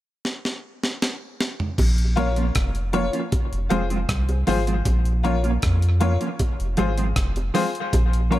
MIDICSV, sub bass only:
0, 0, Header, 1, 2, 480
1, 0, Start_track
1, 0, Key_signature, -5, "minor"
1, 0, Tempo, 768246
1, 1113, Time_signature, 4, 2, 24, 8
1, 5243, End_track
2, 0, Start_track
2, 0, Title_t, "Sub bass"
2, 0, Program_c, 0, 38
2, 1118, Note_on_c, 0, 34, 98
2, 1570, Note_off_c, 0, 34, 0
2, 1601, Note_on_c, 0, 29, 84
2, 1937, Note_off_c, 0, 29, 0
2, 2204, Note_on_c, 0, 29, 109
2, 2307, Note_off_c, 0, 29, 0
2, 2322, Note_on_c, 0, 29, 102
2, 2537, Note_off_c, 0, 29, 0
2, 2557, Note_on_c, 0, 36, 84
2, 2775, Note_off_c, 0, 36, 0
2, 2801, Note_on_c, 0, 32, 95
2, 3017, Note_off_c, 0, 32, 0
2, 3036, Note_on_c, 0, 34, 105
2, 3489, Note_off_c, 0, 34, 0
2, 3523, Note_on_c, 0, 41, 90
2, 3858, Note_off_c, 0, 41, 0
2, 4127, Note_on_c, 0, 29, 107
2, 4228, Note_off_c, 0, 29, 0
2, 4245, Note_on_c, 0, 32, 102
2, 4459, Note_off_c, 0, 32, 0
2, 4478, Note_on_c, 0, 29, 94
2, 4695, Note_off_c, 0, 29, 0
2, 4960, Note_on_c, 0, 34, 107
2, 5243, Note_off_c, 0, 34, 0
2, 5243, End_track
0, 0, End_of_file